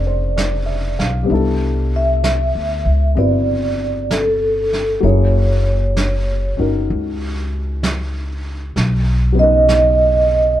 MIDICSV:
0, 0, Header, 1, 5, 480
1, 0, Start_track
1, 0, Tempo, 931677
1, 675, Time_signature, 4, 2, 24, 8
1, 5461, End_track
2, 0, Start_track
2, 0, Title_t, "Vibraphone"
2, 0, Program_c, 0, 11
2, 0, Note_on_c, 0, 74, 58
2, 509, Note_off_c, 0, 74, 0
2, 1011, Note_on_c, 0, 76, 89
2, 1638, Note_on_c, 0, 74, 66
2, 1660, Note_off_c, 0, 76, 0
2, 2118, Note_on_c, 0, 69, 61
2, 2131, Note_off_c, 0, 74, 0
2, 2575, Note_off_c, 0, 69, 0
2, 2597, Note_on_c, 0, 73, 74
2, 3377, Note_off_c, 0, 73, 0
2, 4839, Note_on_c, 0, 75, 94
2, 5461, Note_off_c, 0, 75, 0
2, 5461, End_track
3, 0, Start_track
3, 0, Title_t, "Grand piano"
3, 0, Program_c, 1, 0
3, 0, Control_c, 1, 64, 127
3, 0, Note_on_c, 1, 56, 37
3, 0, Note_on_c, 1, 60, 38
3, 0, Note_on_c, 1, 62, 36
3, 0, Note_on_c, 1, 65, 38
3, 0, Note_on_c, 1, 68, 32
3, 0, Note_on_c, 1, 70, 42
3, 0, Note_on_c, 1, 72, 41
3, 35, Note_off_c, 1, 72, 0
3, 35, Note_on_c, 1, 72, 36
3, 188, Note_on_c, 1, 74, 41
3, 284, Note_off_c, 1, 72, 0
3, 341, Note_on_c, 1, 76, 39
3, 494, Note_off_c, 1, 74, 0
3, 510, Note_on_c, 1, 77, 41
3, 596, Note_off_c, 1, 76, 0
3, 633, Note_on_c, 1, 55, 47
3, 648, Note_on_c, 1, 59, 39
3, 653, Note_off_c, 1, 62, 0
3, 661, Note_on_c, 1, 62, 39
3, 671, Note_off_c, 1, 56, 0
3, 673, Note_off_c, 1, 60, 0
3, 674, Note_off_c, 1, 65, 0
3, 674, Note_off_c, 1, 70, 0
3, 675, Note_off_c, 1, 68, 0
3, 678, Note_on_c, 1, 64, 43
3, 680, Control_c, 1, 64, 0
3, 689, Note_on_c, 1, 69, 46
3, 761, Note_off_c, 1, 77, 0
3, 784, Control_c, 1, 64, 127
3, 1624, Note_off_c, 1, 64, 0
3, 1624, Note_on_c, 1, 60, 39
3, 1632, Note_on_c, 1, 64, 33
3, 1636, Note_on_c, 1, 66, 33
3, 1642, Note_on_c, 1, 71, 39
3, 2574, Note_off_c, 1, 55, 0
3, 2578, Note_on_c, 1, 54, 45
3, 2581, Note_off_c, 1, 59, 0
3, 2583, Note_on_c, 1, 58, 40
3, 2587, Note_off_c, 1, 62, 0
3, 2589, Note_off_c, 1, 60, 0
3, 2591, Note_off_c, 1, 64, 0
3, 2591, Note_on_c, 1, 61, 38
3, 2595, Note_off_c, 1, 66, 0
3, 2598, Note_off_c, 1, 71, 0
3, 2599, Note_on_c, 1, 64, 43
3, 2602, Note_off_c, 1, 69, 0
3, 2602, Control_c, 1, 64, 0
3, 2606, Note_on_c, 1, 68, 43
3, 2688, Control_c, 1, 64, 127
3, 3377, Note_off_c, 1, 61, 0
3, 3385, Note_on_c, 1, 61, 36
3, 3394, Note_on_c, 1, 63, 33
3, 3396, Note_on_c, 1, 66, 35
3, 3401, Note_on_c, 1, 70, 44
3, 4503, Note_off_c, 1, 54, 0
3, 4505, Note_off_c, 1, 61, 0
3, 4506, Note_off_c, 1, 58, 0
3, 4510, Note_off_c, 1, 63, 0
3, 4511, Note_off_c, 1, 66, 0
3, 4514, Note_off_c, 1, 64, 0
3, 4514, Note_off_c, 1, 70, 0
3, 4517, Note_off_c, 1, 68, 0
3, 4518, Control_c, 1, 64, 0
3, 4619, Control_c, 1, 64, 127
3, 4804, Note_on_c, 1, 54, 39
3, 4818, Note_on_c, 1, 59, 39
3, 4830, Note_on_c, 1, 61, 39
3, 4848, Note_on_c, 1, 63, 39
3, 4860, Note_on_c, 1, 71, 50
3, 5461, Note_off_c, 1, 54, 0
3, 5461, Note_off_c, 1, 59, 0
3, 5461, Note_off_c, 1, 61, 0
3, 5461, Note_off_c, 1, 63, 0
3, 5461, Note_off_c, 1, 71, 0
3, 5461, End_track
4, 0, Start_track
4, 0, Title_t, "Upright bass"
4, 0, Program_c, 2, 32
4, 0, Note_on_c, 2, 29, 73
4, 495, Note_off_c, 2, 29, 0
4, 513, Note_on_c, 2, 35, 53
4, 662, Note_off_c, 2, 35, 0
4, 668, Note_on_c, 2, 36, 67
4, 1291, Note_off_c, 2, 36, 0
4, 1315, Note_on_c, 2, 38, 50
4, 1464, Note_off_c, 2, 38, 0
4, 1470, Note_on_c, 2, 37, 61
4, 1621, Note_off_c, 2, 37, 0
4, 1632, Note_on_c, 2, 31, 76
4, 2572, Note_off_c, 2, 31, 0
4, 2591, Note_on_c, 2, 30, 72
4, 3375, Note_off_c, 2, 30, 0
4, 3394, Note_on_c, 2, 31, 57
4, 3541, Note_off_c, 2, 31, 0
4, 3556, Note_on_c, 2, 37, 69
4, 4492, Note_off_c, 2, 37, 0
4, 4513, Note_on_c, 2, 35, 72
4, 5451, Note_off_c, 2, 35, 0
4, 5461, End_track
5, 0, Start_track
5, 0, Title_t, "Drums"
5, 193, Note_on_c, 9, 25, 31
5, 193, Note_on_c, 9, 38, 41
5, 193, Note_on_c, 9, 44, 52
5, 245, Note_off_c, 9, 38, 0
5, 245, Note_off_c, 9, 44, 0
5, 512, Note_on_c, 9, 38, 24
5, 564, Note_off_c, 9, 38, 0
5, 668, Note_off_c, 9, 25, 0
5, 668, Note_on_c, 9, 25, 30
5, 1153, Note_off_c, 9, 25, 0
5, 1153, Note_on_c, 9, 25, 29
5, 1153, Note_on_c, 9, 38, 39
5, 1153, Note_on_c, 9, 44, 48
5, 1204, Note_off_c, 9, 38, 0
5, 1204, Note_off_c, 9, 44, 0
5, 1634, Note_off_c, 9, 25, 0
5, 1634, Note_on_c, 9, 25, 28
5, 2116, Note_off_c, 9, 25, 0
5, 2116, Note_on_c, 9, 25, 36
5, 2116, Note_on_c, 9, 38, 41
5, 2116, Note_on_c, 9, 44, 55
5, 2167, Note_off_c, 9, 38, 0
5, 2167, Note_off_c, 9, 44, 0
5, 2436, Note_on_c, 9, 38, 23
5, 2488, Note_off_c, 9, 38, 0
5, 2593, Note_off_c, 9, 25, 0
5, 2593, Note_on_c, 9, 25, 30
5, 3074, Note_off_c, 9, 25, 0
5, 3074, Note_on_c, 9, 25, 33
5, 3074, Note_on_c, 9, 38, 41
5, 3074, Note_on_c, 9, 44, 47
5, 3125, Note_off_c, 9, 38, 0
5, 3125, Note_off_c, 9, 44, 0
5, 3554, Note_off_c, 9, 25, 0
5, 3554, Note_on_c, 9, 25, 33
5, 4035, Note_off_c, 9, 25, 0
5, 4035, Note_on_c, 9, 25, 36
5, 4035, Note_on_c, 9, 38, 44
5, 4035, Note_on_c, 9, 44, 58
5, 4087, Note_off_c, 9, 38, 0
5, 4087, Note_off_c, 9, 44, 0
5, 4514, Note_off_c, 9, 25, 0
5, 4514, Note_on_c, 9, 25, 30
5, 4514, Note_on_c, 9, 38, 27
5, 4565, Note_off_c, 9, 38, 0
5, 4990, Note_off_c, 9, 25, 0
5, 4990, Note_on_c, 9, 25, 29
5, 4990, Note_on_c, 9, 38, 39
5, 4990, Note_on_c, 9, 44, 52
5, 5042, Note_off_c, 9, 38, 0
5, 5042, Note_off_c, 9, 44, 0
5, 5461, Note_off_c, 9, 25, 0
5, 5461, End_track
0, 0, End_of_file